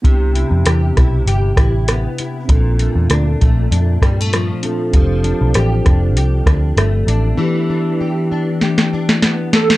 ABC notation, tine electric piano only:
X:1
M:4/4
L:1/8
Q:"Swing 16ths" 1/4=98
K:C
V:1 name="Tine electric piano"
[B,DEG]8 | [CDFA]6- [CDFA] [CDFA] | [CDGA]8 | [B,DEG]8 |]